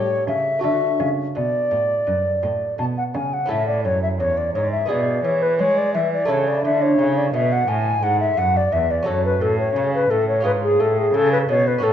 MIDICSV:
0, 0, Header, 1, 4, 480
1, 0, Start_track
1, 0, Key_signature, 2, "major"
1, 0, Tempo, 716846
1, 424, Time_signature, 4, 2, 24, 8
1, 2344, Key_signature, 3, "major"
1, 2344, Tempo, 694444
1, 8170, End_track
2, 0, Start_track
2, 0, Title_t, "Flute"
2, 0, Program_c, 0, 73
2, 0, Note_on_c, 0, 73, 73
2, 183, Note_off_c, 0, 73, 0
2, 187, Note_on_c, 0, 76, 65
2, 419, Note_off_c, 0, 76, 0
2, 423, Note_on_c, 0, 76, 72
2, 732, Note_off_c, 0, 76, 0
2, 910, Note_on_c, 0, 74, 55
2, 1842, Note_off_c, 0, 74, 0
2, 1869, Note_on_c, 0, 81, 76
2, 1909, Note_off_c, 0, 81, 0
2, 1992, Note_on_c, 0, 78, 58
2, 2032, Note_off_c, 0, 78, 0
2, 2106, Note_on_c, 0, 80, 54
2, 2234, Note_on_c, 0, 78, 65
2, 2244, Note_off_c, 0, 80, 0
2, 2341, Note_on_c, 0, 76, 78
2, 2351, Note_off_c, 0, 78, 0
2, 2461, Note_off_c, 0, 76, 0
2, 2465, Note_on_c, 0, 74, 60
2, 2575, Note_off_c, 0, 74, 0
2, 2579, Note_on_c, 0, 73, 72
2, 2701, Note_off_c, 0, 73, 0
2, 2709, Note_on_c, 0, 76, 62
2, 2750, Note_off_c, 0, 76, 0
2, 2818, Note_on_c, 0, 73, 76
2, 2948, Note_on_c, 0, 74, 64
2, 2958, Note_off_c, 0, 73, 0
2, 3060, Note_off_c, 0, 74, 0
2, 3064, Note_on_c, 0, 73, 68
2, 3180, Note_off_c, 0, 73, 0
2, 3184, Note_on_c, 0, 76, 66
2, 3303, Note_on_c, 0, 74, 77
2, 3314, Note_off_c, 0, 76, 0
2, 3545, Note_on_c, 0, 73, 78
2, 3555, Note_off_c, 0, 74, 0
2, 3674, Note_on_c, 0, 71, 67
2, 3684, Note_off_c, 0, 73, 0
2, 3781, Note_off_c, 0, 71, 0
2, 3785, Note_on_c, 0, 73, 87
2, 3919, Note_on_c, 0, 74, 73
2, 3929, Note_off_c, 0, 73, 0
2, 4028, Note_off_c, 0, 74, 0
2, 4032, Note_on_c, 0, 76, 75
2, 4151, Note_off_c, 0, 76, 0
2, 4162, Note_on_c, 0, 74, 70
2, 4275, Note_on_c, 0, 73, 72
2, 4285, Note_off_c, 0, 74, 0
2, 4400, Note_on_c, 0, 74, 68
2, 4410, Note_off_c, 0, 73, 0
2, 4517, Note_off_c, 0, 74, 0
2, 4521, Note_on_c, 0, 76, 70
2, 4636, Note_on_c, 0, 73, 73
2, 4646, Note_off_c, 0, 76, 0
2, 4884, Note_on_c, 0, 74, 61
2, 4895, Note_off_c, 0, 73, 0
2, 4995, Note_off_c, 0, 74, 0
2, 4999, Note_on_c, 0, 76, 75
2, 5123, Note_on_c, 0, 78, 71
2, 5134, Note_off_c, 0, 76, 0
2, 5236, Note_on_c, 0, 80, 74
2, 5246, Note_off_c, 0, 78, 0
2, 5477, Note_on_c, 0, 78, 86
2, 5487, Note_off_c, 0, 80, 0
2, 5591, Note_off_c, 0, 78, 0
2, 5595, Note_on_c, 0, 76, 74
2, 5718, Note_on_c, 0, 78, 88
2, 5728, Note_off_c, 0, 76, 0
2, 5847, Note_on_c, 0, 74, 73
2, 5857, Note_off_c, 0, 78, 0
2, 5957, Note_on_c, 0, 76, 73
2, 5967, Note_off_c, 0, 74, 0
2, 6082, Note_on_c, 0, 74, 69
2, 6093, Note_off_c, 0, 76, 0
2, 6197, Note_on_c, 0, 73, 84
2, 6207, Note_off_c, 0, 74, 0
2, 6315, Note_off_c, 0, 73, 0
2, 6321, Note_on_c, 0, 71, 70
2, 6434, Note_on_c, 0, 69, 74
2, 6445, Note_off_c, 0, 71, 0
2, 6552, Note_off_c, 0, 69, 0
2, 6556, Note_on_c, 0, 73, 72
2, 6789, Note_off_c, 0, 73, 0
2, 6802, Note_on_c, 0, 71, 66
2, 6908, Note_on_c, 0, 69, 76
2, 6919, Note_off_c, 0, 71, 0
2, 7029, Note_off_c, 0, 69, 0
2, 7034, Note_on_c, 0, 73, 65
2, 7145, Note_off_c, 0, 73, 0
2, 7149, Note_on_c, 0, 71, 84
2, 7191, Note_off_c, 0, 71, 0
2, 7272, Note_on_c, 0, 68, 74
2, 7392, Note_on_c, 0, 69, 76
2, 7403, Note_off_c, 0, 68, 0
2, 7515, Note_on_c, 0, 68, 75
2, 7525, Note_off_c, 0, 69, 0
2, 7631, Note_on_c, 0, 69, 95
2, 7641, Note_off_c, 0, 68, 0
2, 7747, Note_off_c, 0, 69, 0
2, 7751, Note_on_c, 0, 71, 80
2, 7793, Note_off_c, 0, 71, 0
2, 7870, Note_on_c, 0, 73, 80
2, 7993, Note_on_c, 0, 71, 67
2, 8004, Note_off_c, 0, 73, 0
2, 8104, Note_on_c, 0, 69, 78
2, 8115, Note_off_c, 0, 71, 0
2, 8170, Note_off_c, 0, 69, 0
2, 8170, End_track
3, 0, Start_track
3, 0, Title_t, "Lute"
3, 0, Program_c, 1, 24
3, 0, Note_on_c, 1, 45, 35
3, 0, Note_on_c, 1, 57, 32
3, 0, Note_on_c, 1, 67, 37
3, 0, Note_on_c, 1, 69, 36
3, 162, Note_off_c, 1, 45, 0
3, 185, Note_on_c, 1, 49, 39
3, 387, Note_off_c, 1, 57, 0
3, 395, Note_on_c, 1, 57, 39
3, 401, Note_off_c, 1, 49, 0
3, 401, Note_off_c, 1, 67, 0
3, 406, Note_off_c, 1, 69, 0
3, 406, Note_on_c, 1, 66, 41
3, 416, Note_on_c, 1, 69, 40
3, 425, Note_on_c, 1, 50, 43
3, 642, Note_off_c, 1, 50, 0
3, 643, Note_off_c, 1, 57, 0
3, 666, Note_on_c, 1, 49, 33
3, 883, Note_off_c, 1, 49, 0
3, 905, Note_on_c, 1, 47, 37
3, 1122, Note_off_c, 1, 47, 0
3, 1145, Note_on_c, 1, 45, 41
3, 1362, Note_off_c, 1, 45, 0
3, 1385, Note_on_c, 1, 42, 36
3, 1602, Note_off_c, 1, 42, 0
3, 1625, Note_on_c, 1, 45, 34
3, 1842, Note_off_c, 1, 45, 0
3, 1863, Note_on_c, 1, 47, 35
3, 2080, Note_off_c, 1, 47, 0
3, 2105, Note_on_c, 1, 49, 36
3, 2307, Note_off_c, 1, 66, 0
3, 2312, Note_off_c, 1, 69, 0
3, 2314, Note_on_c, 1, 61, 44
3, 2319, Note_off_c, 1, 49, 0
3, 2323, Note_on_c, 1, 64, 43
3, 2334, Note_on_c, 1, 69, 43
3, 2345, Note_on_c, 1, 45, 49
3, 2562, Note_off_c, 1, 45, 0
3, 2585, Note_on_c, 1, 42, 38
3, 2803, Note_off_c, 1, 42, 0
3, 2827, Note_on_c, 1, 40, 42
3, 3044, Note_off_c, 1, 40, 0
3, 3071, Note_on_c, 1, 44, 46
3, 3267, Note_off_c, 1, 61, 0
3, 3272, Note_off_c, 1, 64, 0
3, 3277, Note_off_c, 1, 69, 0
3, 3280, Note_on_c, 1, 59, 40
3, 3287, Note_off_c, 1, 44, 0
3, 3290, Note_on_c, 1, 64, 41
3, 3301, Note_on_c, 1, 68, 46
3, 3311, Note_on_c, 1, 47, 44
3, 3527, Note_off_c, 1, 47, 0
3, 3549, Note_on_c, 1, 52, 41
3, 3766, Note_off_c, 1, 52, 0
3, 3788, Note_on_c, 1, 56, 40
3, 4007, Note_off_c, 1, 56, 0
3, 4033, Note_on_c, 1, 52, 42
3, 4233, Note_off_c, 1, 59, 0
3, 4238, Note_off_c, 1, 64, 0
3, 4243, Note_off_c, 1, 68, 0
3, 4246, Note_on_c, 1, 57, 49
3, 4251, Note_off_c, 1, 52, 0
3, 4255, Note_on_c, 1, 64, 47
3, 4266, Note_on_c, 1, 69, 45
3, 4277, Note_on_c, 1, 49, 46
3, 4492, Note_off_c, 1, 49, 0
3, 4518, Note_on_c, 1, 50, 38
3, 4732, Note_off_c, 1, 50, 0
3, 4754, Note_on_c, 1, 49, 40
3, 4969, Note_off_c, 1, 49, 0
3, 4994, Note_on_c, 1, 47, 48
3, 5209, Note_off_c, 1, 47, 0
3, 5231, Note_on_c, 1, 45, 48
3, 5448, Note_off_c, 1, 45, 0
3, 5472, Note_on_c, 1, 44, 42
3, 5689, Note_off_c, 1, 44, 0
3, 5711, Note_on_c, 1, 42, 44
3, 5929, Note_off_c, 1, 42, 0
3, 5952, Note_on_c, 1, 40, 44
3, 6152, Note_off_c, 1, 57, 0
3, 6156, Note_off_c, 1, 64, 0
3, 6161, Note_off_c, 1, 69, 0
3, 6163, Note_on_c, 1, 61, 47
3, 6169, Note_off_c, 1, 40, 0
3, 6173, Note_on_c, 1, 66, 49
3, 6184, Note_on_c, 1, 69, 50
3, 6193, Note_on_c, 1, 42, 52
3, 6408, Note_off_c, 1, 42, 0
3, 6429, Note_on_c, 1, 45, 43
3, 6646, Note_off_c, 1, 45, 0
3, 6670, Note_on_c, 1, 49, 48
3, 6886, Note_off_c, 1, 49, 0
3, 6910, Note_on_c, 1, 45, 46
3, 7107, Note_off_c, 1, 61, 0
3, 7112, Note_off_c, 1, 66, 0
3, 7116, Note_on_c, 1, 61, 46
3, 7118, Note_off_c, 1, 69, 0
3, 7126, Note_off_c, 1, 45, 0
3, 7126, Note_on_c, 1, 65, 44
3, 7138, Note_on_c, 1, 68, 47
3, 7145, Note_on_c, 1, 44, 50
3, 7363, Note_off_c, 1, 44, 0
3, 7389, Note_on_c, 1, 45, 49
3, 7604, Note_off_c, 1, 45, 0
3, 7624, Note_on_c, 1, 49, 47
3, 7840, Note_off_c, 1, 49, 0
3, 7863, Note_on_c, 1, 47, 52
3, 8059, Note_off_c, 1, 61, 0
3, 8064, Note_off_c, 1, 65, 0
3, 8069, Note_on_c, 1, 61, 53
3, 8070, Note_off_c, 1, 68, 0
3, 8078, Note_off_c, 1, 47, 0
3, 8080, Note_on_c, 1, 66, 51
3, 8091, Note_on_c, 1, 69, 50
3, 8101, Note_on_c, 1, 45, 59
3, 8170, Note_off_c, 1, 45, 0
3, 8170, Note_off_c, 1, 61, 0
3, 8170, Note_off_c, 1, 66, 0
3, 8170, Note_off_c, 1, 69, 0
3, 8170, End_track
4, 0, Start_track
4, 0, Title_t, "Cello"
4, 0, Program_c, 2, 42
4, 0, Note_on_c, 2, 45, 53
4, 169, Note_off_c, 2, 45, 0
4, 184, Note_on_c, 2, 49, 43
4, 408, Note_off_c, 2, 49, 0
4, 428, Note_on_c, 2, 50, 54
4, 651, Note_off_c, 2, 50, 0
4, 670, Note_on_c, 2, 49, 52
4, 892, Note_off_c, 2, 49, 0
4, 914, Note_on_c, 2, 47, 47
4, 1135, Note_off_c, 2, 47, 0
4, 1150, Note_on_c, 2, 45, 46
4, 1372, Note_off_c, 2, 45, 0
4, 1389, Note_on_c, 2, 42, 52
4, 1611, Note_off_c, 2, 42, 0
4, 1628, Note_on_c, 2, 45, 50
4, 1850, Note_off_c, 2, 45, 0
4, 1869, Note_on_c, 2, 47, 53
4, 2090, Note_off_c, 2, 47, 0
4, 2108, Note_on_c, 2, 49, 43
4, 2328, Note_off_c, 2, 49, 0
4, 2345, Note_on_c, 2, 45, 53
4, 2587, Note_on_c, 2, 42, 54
4, 2597, Note_off_c, 2, 45, 0
4, 2828, Note_on_c, 2, 40, 52
4, 2838, Note_off_c, 2, 42, 0
4, 3066, Note_off_c, 2, 40, 0
4, 3070, Note_on_c, 2, 44, 55
4, 3305, Note_off_c, 2, 44, 0
4, 3310, Note_on_c, 2, 47, 57
4, 3545, Note_off_c, 2, 47, 0
4, 3548, Note_on_c, 2, 52, 53
4, 3791, Note_on_c, 2, 56, 58
4, 3802, Note_off_c, 2, 52, 0
4, 4035, Note_on_c, 2, 52, 51
4, 4046, Note_off_c, 2, 56, 0
4, 4272, Note_off_c, 2, 52, 0
4, 4276, Note_on_c, 2, 49, 57
4, 4511, Note_off_c, 2, 49, 0
4, 4518, Note_on_c, 2, 50, 61
4, 4751, Note_off_c, 2, 50, 0
4, 4754, Note_on_c, 2, 49, 57
4, 4988, Note_off_c, 2, 49, 0
4, 4994, Note_on_c, 2, 47, 59
4, 5226, Note_off_c, 2, 47, 0
4, 5230, Note_on_c, 2, 45, 61
4, 5465, Note_off_c, 2, 45, 0
4, 5469, Note_on_c, 2, 44, 58
4, 5707, Note_off_c, 2, 44, 0
4, 5712, Note_on_c, 2, 42, 66
4, 5948, Note_off_c, 2, 42, 0
4, 5956, Note_on_c, 2, 40, 48
4, 6190, Note_off_c, 2, 40, 0
4, 6194, Note_on_c, 2, 42, 56
4, 6426, Note_off_c, 2, 42, 0
4, 6430, Note_on_c, 2, 45, 63
4, 6666, Note_off_c, 2, 45, 0
4, 6670, Note_on_c, 2, 49, 62
4, 6903, Note_off_c, 2, 49, 0
4, 6907, Note_on_c, 2, 45, 56
4, 7148, Note_on_c, 2, 44, 57
4, 7158, Note_off_c, 2, 45, 0
4, 7388, Note_on_c, 2, 45, 56
4, 7399, Note_off_c, 2, 44, 0
4, 7624, Note_off_c, 2, 45, 0
4, 7628, Note_on_c, 2, 49, 67
4, 7862, Note_off_c, 2, 49, 0
4, 7866, Note_on_c, 2, 47, 51
4, 8099, Note_off_c, 2, 47, 0
4, 8105, Note_on_c, 2, 45, 67
4, 8170, Note_off_c, 2, 45, 0
4, 8170, End_track
0, 0, End_of_file